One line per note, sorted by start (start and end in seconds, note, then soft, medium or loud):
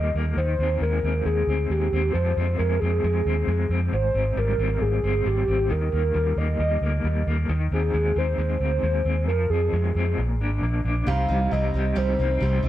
0.00 0.11 D#2 medium
0.00 0.37 D#3 medium
0.00 0.42 G3 medium
0.00 0.14 A#3 medium
0.00 0.12 D#5 loud
0.14 0.33 D#2 medium
0.14 0.42 A#3 medium
0.37 0.55 D#2 medium
0.37 2.14 D#3 medium
0.37 0.78 C5 loud
0.59 0.77 D#2 medium
0.59 1.04 C4 medium
0.81 0.99 D#2 loud
0.81 1.26 G#3 medium
0.81 1.23 A#4 medium
1.03 1.22 D#2 medium
1.03 1.48 C4 medium
1.25 1.44 D#2 medium
1.25 1.71 G#3 medium
1.25 1.72 G#4 medium
1.47 1.66 D2 medium
1.47 1.93 C4 medium
1.70 1.88 D#2 medium
1.70 2.59 G#3 medium
1.70 2.15 G4 medium
1.92 2.11 D#2 medium
1.92 2.37 C4 medium
2.13 2.33 F2 medium
2.13 3.92 F3 medium
2.13 2.59 C5 loud
2.37 2.55 F2 medium
2.37 2.81 C4 medium
2.58 2.77 F2 medium
2.58 3.04 G#3 medium
2.58 2.81 A#4 medium
2.80 3.00 F2 medium
2.80 3.26 C4 medium
2.80 3.69 G#4 medium
3.03 3.22 F2 medium
3.03 3.48 G#3 medium
3.26 3.44 D#2 medium
3.26 3.70 C4 medium
3.47 3.66 F2 medium
3.47 3.97 G#3 soft
3.69 3.88 F2 medium
3.69 3.97 C4 medium
3.92 4.11 G#1 medium
3.92 5.71 G#2 medium
3.92 4.40 C5 medium
4.14 4.33 G#1 medium
4.14 4.58 C4 medium
4.36 4.55 G#1 medium
4.36 5.26 G3 medium
4.36 4.74 A#4 medium
4.58 4.77 G#1 medium
4.58 5.03 C4 medium
4.74 4.83 A#4 medium
4.81 4.99 G#1 medium
4.81 5.26 G#4 medium
5.03 5.22 G1 medium
5.03 5.47 C4 medium
5.25 5.44 G#1 medium
5.25 6.14 G3 medium
5.25 5.73 G4 medium
5.48 5.71 G#1 medium
5.48 5.75 C4 medium
5.70 5.89 D#2 medium
5.70 7.48 D#3 medium
5.70 6.15 A#4 medium
5.92 6.11 D#2 medium
5.92 6.36 A#3 medium
6.14 6.33 D#2 medium
6.14 6.60 G3 medium
6.14 6.39 A#4 medium
6.36 6.55 D#2 medium
6.36 6.82 A#3 medium
6.36 7.27 D#5 loud
6.59 6.78 D#2 medium
6.59 7.05 G3 medium
6.81 7.00 D2 medium
6.81 7.26 A#3 medium
7.04 7.22 D#2 medium
7.04 7.54 G3 medium
7.27 7.45 D#2 medium
7.27 7.54 A#3 medium
7.49 7.67 D#2 medium
7.49 9.28 D#3 medium
7.71 7.90 D#2 medium
7.71 8.16 C4 medium
7.71 8.20 G#4 medium
7.93 8.12 D#2 medium
7.93 8.37 G#3 medium
8.16 8.34 D#2 medium
8.16 8.59 C4 medium
8.16 8.39 C5 loud
8.38 8.57 D#2 medium
8.38 8.82 G#3 medium
8.38 9.24 C5 loud
8.60 8.79 D2 medium
8.60 9.04 C4 medium
8.83 9.01 D#2 medium
8.83 9.33 G#3 medium
9.05 9.27 D#2 medium
9.05 9.32 C4 medium
9.27 9.46 F2 medium
9.27 10.23 F3 medium
9.27 9.51 A#4 loud
9.50 9.68 F2 medium
9.50 9.95 C4 medium
9.50 10.17 G#4 medium
9.73 9.91 F2 medium
9.73 10.22 G#3 medium
9.95 10.14 F2 medium
9.95 10.23 C4 medium
10.17 10.40 A#1 medium
10.17 11.07 A#2 medium
10.40 10.58 G#1 medium
10.40 10.84 D4 medium
10.62 10.80 A#1 medium
10.62 11.12 A#3 medium
10.84 11.03 A#1 medium
10.84 11.12 D4 medium
11.07 11.25 C2 medium
11.07 11.29 C3 medium
11.07 12.69 C3 medium
11.07 11.30 G3 medium
11.07 11.29 C4 medium
11.07 11.27 D#4 medium
11.07 11.74 G4 medium
11.07 11.53 F5 loud
11.28 11.48 C2 medium
11.28 12.41 G3 medium
11.28 11.52 G3 soft
11.28 11.52 C4 soft
11.28 11.52 D#4 medium
11.51 11.70 C2 medium
11.51 11.74 C3 medium
11.51 11.75 G3 medium
11.51 12.20 C4 medium
11.51 11.74 C4 medium
11.51 11.72 D#4 medium
11.51 11.99 D#5 loud
11.74 11.93 C2 medium
11.74 11.95 G3 soft
11.74 11.95 C4 soft
11.74 11.96 D#4 soft
11.74 12.69 G4 medium
11.96 12.15 C2 loud
11.96 12.19 C3 medium
11.96 12.69 D#3 medium
11.96 12.19 G3 medium
11.96 12.19 C4 medium
11.96 12.18 D#4 medium
11.96 12.42 C5 loud
12.19 12.38 C2 medium
12.19 12.40 G3 soft
12.19 12.31 A#3 medium
12.19 12.41 C4 soft
12.19 12.42 D#4 medium
12.31 12.64 C4 soft
12.40 12.60 C2 medium
12.40 12.64 C3 medium
12.40 12.64 G3 medium
12.40 12.69 G3 medium
12.40 12.63 C4 medium
12.40 12.61 D#4 medium
12.40 12.69 C5 loud
12.62 12.69 C2 medium
12.62 12.69 G3 soft
12.62 12.69 C4 soft
12.62 12.69 C4 medium
12.62 12.69 D#4 medium